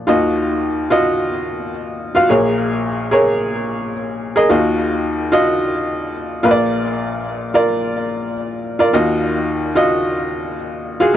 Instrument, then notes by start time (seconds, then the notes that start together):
upright piano
0.07 D#2 D#3 F4 F#4 D#5
0.90 F4 F#4 D#5
2.15 F4 F#4 F5
2.29 A#1 A#2 G#4 A#4 C#5
3.11 G#4 A#4 C#5
4.36 G#4 A#4 D#5
4.49 D#2 D#3 F4 F#4 D#5
5.32 F4 F#4 D#5
6.43 A#1 A#2 F4 A#4 B4
6.51 D5
7.54 F4 A#4 D5
8.79 F4 A#4 D5
8.93 D#2 D#3 F4 F#4 D#5
9.75 F4 F#4 D#5
11.00 F4 F#4 G#4